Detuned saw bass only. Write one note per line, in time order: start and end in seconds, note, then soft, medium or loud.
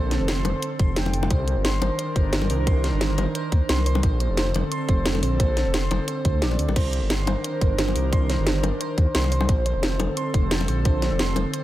0.00 0.19 A#1 medium
0.21 0.44 F1 medium
0.45 0.54 F1 medium
0.80 1.29 F1 medium
1.31 1.55 C2 loud
1.57 1.81 G1 medium
1.82 1.90 G1 medium
2.16 2.49 G1 medium
2.50 2.92 C2 medium
2.93 3.17 G1 medium
3.18 3.26 G1 medium
3.52 3.60 D#2 loud
3.69 4.02 C2 medium
4.03 4.28 A#1 loud
4.30 4.53 F1 medium
4.54 4.63 F1 medium
4.89 5.22 F1 medium
5.23 5.65 A#1 medium
5.66 5.90 F1 medium
5.91 5.99 F1 medium
6.25 6.44 D2 loud
6.42 6.58 A#1 medium
6.59 6.67 D2 loud
6.68 6.75 A#1 loud
6.76 7.01 C2 loud
7.02 7.26 G1 medium
7.27 7.36 G1 medium
7.61 7.94 G1 medium
7.95 8.37 C2 medium
8.39 8.62 G1 medium
8.64 8.72 G1 medium
8.98 9.06 D#2 loud
9.15 9.48 C2 medium
9.49 9.74 A#1 loud
9.75 9.99 F1 medium
10.00 10.08 F1 medium
10.34 10.67 F1 medium
10.68 11.10 A#1 medium
11.11 11.35 F1 medium
11.37 11.45 F1 loud